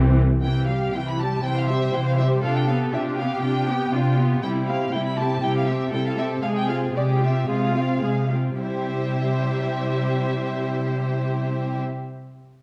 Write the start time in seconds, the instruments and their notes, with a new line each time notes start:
Already playing: double bass section C2, cello section C3, viola section E3 C4
0.42 cello section C3, viola section E3 E4, violin section G5
0.67 viola section G3 G4, violin section F5
0.93 cello section C3, viola section E3 E4, violin section G5
1.07 violin section B5
1.18 viola section G3 G4, violin section A5
1.43 cello section C3, viola section E3 E4, violin section C5 G5
1.57 violin section F5
1.69 viola section G3 G4, violin section E5
1.93 cello section C3, viola section E3 E4, violin section G5
2.07 violin section F5
2.18 viola section G3 G4, violin section E5
2.42 cello section C3, viola section D4 F4, violin section A4 F5
2.56 violin section G5
2.68 viola section B3 G4, violin section F5
2.92 cello section C3, viola section D4 F4, violin section G4 E5
3.17 viola section B3 G4, violin section F5
3.41 cello section C3, viola section D4 F4, violin section G5
3.69 viola section B3 G4
3.92 cello section C3, viola section D4 F4, violin section F4
4.18 viola section B3 G4
4.41 cello section C3, viola section G3 E4, violin section E4 G5
4.67 viola section C4 G4, violin section F5
4.91 cello section C3, viola section G3 E4, violin section E4 G5
5.06 violin section B5
5.17 viola section C4 G4, violin section A5
5.41 cello section C3, viola section G3 E4, violin section G4 G5
5.56 violin section F5
5.67 viola section C4 G4, violin section E5
5.91 cello section C3, viola section G3 E4, violin section A4 G5
6.06 violin section F5
6.17 viola section C4 G4, violin section E5
6.42 cello section C3, viola section G#3 G#4, violin section G#4 F5
6.57 violin section G5
6.68 viola section C4 F4, violin section F5
6.94 cello section C3, viola section G#3 G#4, violin section G4 D5
7.21 viola section C4 F4, violin section E5
7.47 cello section C3, viola section G#3 G#4, violin section F4 F5
7.75 viola section C4 F4
8.02 cello section C3, viola section G#3 G#4, violin section G#4
8.31 viola section C4 F4
8.59 cello section C3, viola section G3 E4, violin section G4 C5 E5